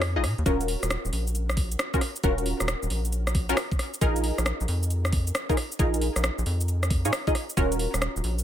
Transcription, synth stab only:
0.16 0.23 D#4 medium
0.16 0.23 F4 medium
0.16 0.23 G#4 medium
0.16 0.23 D#5 medium
0.46 1.90 C#4 medium
0.46 1.90 F4 medium
0.46 1.90 F#4 medium
0.46 1.90 A#4 loud
1.94 2.00 C#4 medium
1.94 2.00 F4 medium
1.94 2.00 F#4 medium
1.94 2.00 A#4 loud
2.24 3.46 C#4 loud
2.24 3.46 F4 medium
2.24 3.46 F#4 medium
2.24 3.46 A#4 loud
3.49 3.56 C#4 loud
3.49 3.56 F4 loud
3.49 3.56 F#4 medium
3.49 3.56 A#4 loud
4.01 5.46 D#4 loud
4.01 5.46 F4 medium
4.01 5.46 G#4 medium
4.01 5.46 A#4 loud
5.49 5.56 D#4 medium
5.49 5.56 F4 medium
5.49 5.56 G#4 medium
5.49 5.56 A#4 loud
5.79 7.01 D#4 medium
5.79 7.01 F4 medium
5.79 7.01 G#4 medium
5.79 7.01 A#4 loud
7.05 7.12 D#4 medium
7.05 7.12 F4 medium
7.05 7.12 G#4 medium
7.05 7.12 C#5 medium
7.27 7.34 D#4 medium
7.27 7.34 F4 medium
7.27 7.34 G#4 medium
7.27 7.34 D#5 medium
7.57 8.44 C#4 loud
7.57 8.44 F4 medium
7.57 8.44 F#4 medium
7.57 8.44 A#4 loud

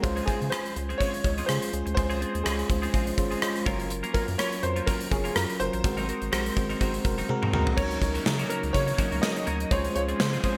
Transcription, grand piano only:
0.26 0.52 G#4 medium
0.50 1.01 C5 medium
0.98 1.49 C#5 loud
1.46 1.93 C5 medium
1.95 2.46 C5 loud
2.44 2.89 G#4 medium
4.14 4.39 A#4 medium
4.38 4.64 C#5 medium
4.63 4.85 C5 medium
4.86 5.12 A#4 medium
5.11 5.36 G#4 medium
5.35 5.58 A#4 medium
5.60 7.25 C5 loud
7.77 8.52 C#5 medium
8.49 8.72 A#4 medium
8.73 9.24 C#5 loud
9.22 9.67 D#5 loud
9.71 9.94 C#5 loud
9.96 10.01 C#5 medium
10.20 10.57 C5 medium

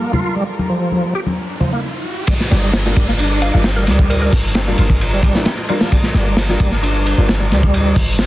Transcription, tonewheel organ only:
0.00 0.12 A#3 medium
0.13 0.35 F4 medium
0.36 0.44 G3 medium
0.69 1.14 F3 medium
1.15 1.20 G4 medium
1.60 1.71 F3 medium
1.73 1.80 A#3 medium
2.29 2.34 G3 medium
2.51 2.62 G3 loud
2.63 2.71 G3 medium
2.96 3.07 G3 loud
3.09 3.13 A#3 loud
3.19 3.64 D4 medium
3.66 3.71 C4 medium
3.78 3.85 G3 medium
3.88 4.32 G3 loud
4.56 4.61 C4 medium
4.79 4.84 F4 medium
5.13 5.21 G3 medium
5.24 5.35 G3 medium
5.47 5.52 C4 medium
5.69 5.75 F4 medium
5.81 5.89 A#3 medium
5.92 5.97 G3 medium
6.14 6.25 G3 loud
6.27 6.35 G3 medium
6.60 6.71 G3 loud
6.72 6.77 A#3 loud
6.83 7.27 D4 medium
7.28 7.34 C4 medium
7.40 7.48 G3 medium
7.51 7.95 G3 loud
8.19 8.25 C4 medium

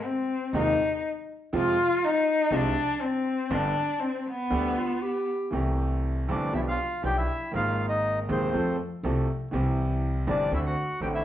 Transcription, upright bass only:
0.53 0.74 D#2 medium
1.53 1.74 F2 medium
2.51 2.72 C2 medium
3.50 3.71 G1 medium
4.50 4.72 D2 medium
5.53 6.25 C2 medium
6.29 6.50 G1 medium
6.53 6.75 B1 medium
7.04 7.25 B1 medium
7.54 8.25 G#1 medium
8.29 8.50 D#2 medium
8.54 8.75 F2 medium
9.03 9.25 C2 medium
9.53 10.24 C2 medium
10.27 10.48 G1 medium
10.51 10.73 D2 medium
11.01 11.22 A1 medium

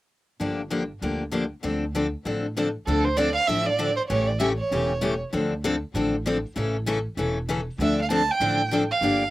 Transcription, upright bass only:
0.40 0.90 G1 medium
1.02 1.51 D2 medium
1.64 2.13 D2 medium
2.25 2.75 A1 medium
2.87 3.36 D2 medium
3.48 3.98 A1 medium
4.10 4.59 A1 medium
4.71 5.21 E1 medium
5.33 5.82 D2 medium
5.94 6.43 A1 medium
6.56 7.05 A1 medium
7.17 7.66 E1 medium
7.78 8.28 D2 medium
8.40 8.89 A1 medium
9.01 9.30 G1 medium

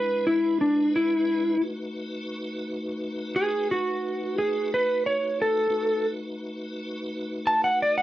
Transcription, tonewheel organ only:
0.00 1.57 G#3 medium
0.00 1.57 D4 medium
0.00 1.57 E4 medium
0.00 1.57 B4 medium
1.61 5.67 A3 medium
1.61 5.68 D#4 medium
1.61 5.68 F#4 medium
1.61 5.68 B4 medium
5.69 8.02 A3 medium
5.69 8.02 D#4 medium
5.69 8.02 F#4 medium
5.69 8.02 B4 medium

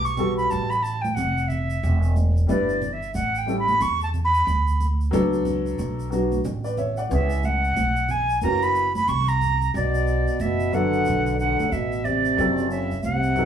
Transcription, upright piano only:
0.00 0.12 G3 medium
0.00 0.12 B3 medium
0.00 0.13 F#4 medium
0.00 0.17 A4 medium
0.17 0.66 G3 medium
0.17 0.67 B3 medium
0.17 0.67 F#4 medium
0.17 0.68 A4 medium
2.47 2.73 G3 medium
2.47 2.74 D4 medium
2.47 2.74 E4 medium
2.47 2.75 B4 medium
3.46 3.72 G3 medium
3.46 3.73 C#4 medium
3.46 3.73 E4 medium
3.46 3.74 A4 medium
5.11 6.05 F#3 medium
5.11 6.06 B3 medium
5.11 6.07 D4 medium
5.11 6.07 A4 loud
6.10 6.36 F#3 medium
6.10 6.36 B3 medium
6.10 6.37 D4 medium
6.10 6.37 F#4 medium
6.64 6.77 B4 medium
6.64 6.77 D5 medium
6.78 6.97 C#5 medium
6.78 6.97 E5 medium
6.97 7.29 D5 medium
6.97 7.29 F#5 medium
7.09 7.35 E3 medium
7.09 7.35 B3 medium
7.09 7.36 C#4 medium
7.09 7.36 G#4 medium
8.41 8.83 E3 medium
8.41 8.83 A#3 medium
8.41 8.84 C#4 medium
8.41 8.84 F#4 medium
10.72 11.66 F#3 medium
10.72 11.66 B3 medium
10.72 11.67 D4 medium
10.72 11.68 A4 medium
12.37 12.86 F#3 medium
12.37 12.87 C4 medium
12.37 12.87 E4 medium
12.37 12.88 A4 medium
13.36 13.45 F#3 medium
13.36 13.45 B3 medium
13.36 13.45 D#4 medium
13.36 13.45 A4 medium

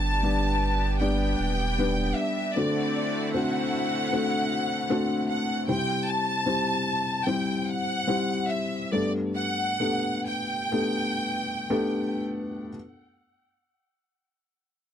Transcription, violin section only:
0.00 0.97 A5 loud
1.00 2.13 G5 loud
2.17 2.56 E5 medium
2.56 3.34 D5 medium
3.33 5.25 F#5 loud
5.29 5.66 F#5 loud
5.69 6.05 G5 loud
6.07 7.26 A5 loud
7.26 7.66 G5 loud
7.67 8.50 F#5 loud
8.49 8.92 E5 medium
8.93 9.12 D5 medium
9.36 10.21 F#5 loud
10.26 12.22 G5 loud

